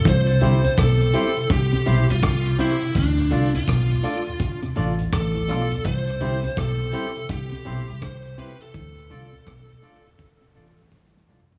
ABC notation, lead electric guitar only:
X:1
M:4/4
L:1/16
Q:"Swing 16ths" 1/4=83
K:C
V:1 name="Lead electric guitar"
c4 A4 G3 F3 E2 | D3 F6 z3 A4 | c4 A4 G4 c2 B A- | A12 z4 |]